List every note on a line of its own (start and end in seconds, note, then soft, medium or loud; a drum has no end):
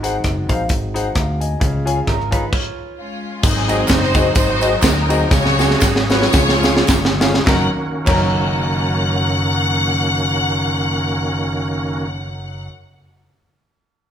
0.00 0.17 G#1 medium
0.00 0.46 G#2 medium
0.00 2.50 G#3 medium
0.00 1.60 C4 medium
0.00 1.58 D#4 medium
0.00 0.15 D#4 medium
0.00 1.60 F#4 medium
0.00 0.15 G#4 medium
0.00 0.15 C5 medium
0.00 0.15 F#5 medium
0.00 closed hi-hat medium
0.24 0.46 F#1 medium
0.24 kick medium
0.24 cross-stick medium
0.24 closed hi-hat medium
0.49 0.70 A#1 medium
0.49 0.60 D#4 medium
0.49 0.61 G#4 medium
0.49 0.61 C5 medium
0.49 0.61 F5 medium
0.49 kick medium
0.49 closed hi-hat medium
0.69 1.09 G#1 loud
0.69 kick loud
0.69 closed hi-hat medium
0.94 1.06 D#4 medium
0.94 1.06 G#4 medium
0.94 1.06 C5 medium
0.94 1.07 F#5 medium
0.94 closed hi-hat medium
1.15 1.54 D2 medium
1.15 1.40 F5 medium
1.15 1.40 A#5 medium
1.15 kick medium
1.15 cross-stick loud
1.15 closed hi-hat medium
1.40 1.84 D#5 medium
1.40 1.84 G#5 medium
1.40 closed hi-hat medium
1.60 2.00 C#2 medium
1.60 2.28 C#3 medium
1.60 2.52 C#4 medium
1.60 2.52 F4 medium
1.60 2.52 G#4 medium
1.60 kick loud
1.60 closed hi-hat medium
1.85 1.97 F4 medium
1.85 1.97 G#4 medium
1.85 1.98 C#5 medium
1.85 1.98 G#5 medium
1.85 closed hi-hat medium
2.07 2.46 G#1 medium
2.07 2.32 C#4 medium
2.07 2.32 A#4 medium
2.07 kick medium
2.07 cross-stick loud
2.07 closed hi-hat medium
2.21 cross-stick soft
2.31 2.52 D#4 medium
2.31 2.43 F4 medium
2.31 2.43 G#4 medium
2.31 2.52 B4 medium
2.31 2.43 C#5 medium
2.31 2.43 A#5 medium
2.31 kick medium
2.31 closed hi-hat medium
2.53 3.21 F4 medium
2.53 3.20 C#5 medium
2.53 kick loud
2.53 crash medium
2.98 3.41 G#3 soft
2.98 3.41 C#4 soft
2.98 3.40 F4 medium
3.43 3.82 G#1 loud
3.43 4.11 G#2 medium
3.43 6.31 F#3 medium
3.43 5.29 C4 medium
3.43 4.31 C4 medium
3.43 5.29 D#4 medium
3.43 3.89 D#4 medium
3.43 3.89 G#4 medium
3.43 7.43 G#4 medium
3.43 kick loud
3.43 crash loud
3.43 tambourine medium
3.68 3.80 C4 medium
3.68 3.80 D#4 medium
3.68 3.80 F#4 medium
3.68 3.80 G#4 medium
3.68 3.80 D#5 medium
3.68 ride medium
3.68 tambourine medium
3.88 4.29 F#1 loud
3.88 4.35 D#4 medium
3.88 4.35 F#4 medium
3.88 4.34 C5 loud
3.88 kick medium
3.88 snare loud
3.88 clap loud
3.88 ride medium
3.88 tambourine loud
4.03 snare soft
4.14 4.26 C4 medium
4.14 4.26 D#4 medium
4.14 4.26 F#4 medium
4.14 4.26 G#4 medium
4.14 4.26 D#5 medium
4.14 kick loud
4.14 ride medium
4.14 tambourine medium
4.35 4.76 G#1 loud
4.35 4.82 D#4 medium
4.35 4.82 F#4 medium
4.35 4.79 C5 loud
4.35 kick loud
4.35 ride medium
4.35 tambourine medium
4.61 4.73 C4 medium
4.61 4.73 D#4 medium
4.61 4.73 F#4 medium
4.61 4.73 G#4 medium
4.61 4.74 D#5 medium
4.61 ride medium
4.61 tambourine medium
4.82 5.24 D2 medium
4.82 5.28 D#4 medium
4.82 5.28 F#4 medium
4.82 5.31 A#4 loud
4.82 kick loud
4.82 snare loud
4.82 clap medium
4.82 ride medium
4.82 tambourine loud
5.09 5.21 C4 medium
5.09 5.21 D#4 medium
5.09 5.21 F#4 medium
5.09 5.21 G#4 medium
5.09 5.22 D#5 medium
5.09 ride medium
5.09 tambourine medium
5.30 5.74 C#2 loud
5.30 6.06 C#3 medium
5.30 7.46 G#3 medium
5.30 7.45 C#4 medium
5.30 6.30 F#4 medium
5.30 6.11 G#4 medium
5.30 5.81 C#5 loud
5.30 kick loud
5.30 snare medium
5.30 tambourine medium
5.46 snare medium
5.58 5.71 C#4 medium
5.58 5.71 F#4 medium
5.58 5.71 G#4 medium
5.58 snare medium
5.58 tambourine medium
5.71 snare medium
5.81 6.26 G#1 loud
5.81 kick medium
5.81 snare medium
5.81 clap loud
5.81 tambourine loud
5.96 snare medium
6.09 6.23 C#4 medium
6.09 7.18 F4 medium
6.09 6.23 F#4 medium
6.09 7.18 G#4 medium
6.09 6.23 B4 medium
6.09 7.18 C#5 loud
6.09 snare medium
6.09 tambourine medium
6.22 snare medium
6.33 6.81 C#2 loud
6.33 7.17 C#3 medium
6.33 7.46 F3 medium
6.33 kick loud
6.33 snare loud
6.33 tambourine medium
6.49 snare medium
6.63 6.77 C#4 medium
6.63 6.77 F4 medium
6.63 6.78 G#4 medium
6.63 snare medium
6.63 tambourine medium
6.77 snare loud
6.88 7.38 G1 medium
6.88 kick loud
6.88 snare loud
6.88 clap medium
6.88 tambourine loud
7.05 snare loud
7.20 7.35 C#4 medium
7.20 7.35 F4 medium
7.20 7.36 G#4 medium
7.20 snare loud
7.20 tambourine medium
7.34 snare medium
7.44 7.66 F#1 loud
7.44 7.66 F#2 medium
7.44 12.06 D#3 medium
7.44 7.64 F#3 loud
7.44 12.07 A#3 medium
7.44 7.65 C#4 medium
7.44 12.07 C#4 medium
7.44 7.66 D#4 medium
7.44 12.07 F#4 medium
7.44 7.66 F#5 medium
7.44 kick loud
7.44 snare medium
7.44 clap medium
7.49 7.67 A#4 loud
8.05 12.67 F#1 loud
8.05 12.67 F#2 medium
8.05 12.65 F#3 medium
8.05 12.66 C#4 medium
8.05 12.68 D#4 medium
8.05 12.69 A#4 loud
8.05 12.67 F#5 loud
8.05 kick loud
8.05 clap medium
8.05 crash medium